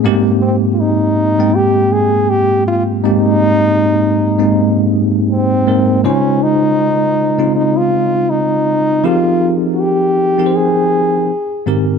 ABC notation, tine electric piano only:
X:1
M:4/4
L:1/16
Q:"Swing 16ths" 1/4=80
K:Ab
V:1 name="Tine electric piano"
[A,,A,B,CG]4 z3 [A,,A,B,Cg]4- [A,,A,B,Cg] z4 | [A,,A,B,CG]4 z3 [A,,A,B,CE]4 z3 [A,,A,B,CB] z | [D,A,EFc]4 z3 [D,A,CEF]4- [D,A,CEF] z4 | [F,CEGAB]4 z3 [F,CEABcg]4 z3 [A,,E,CGB] z |]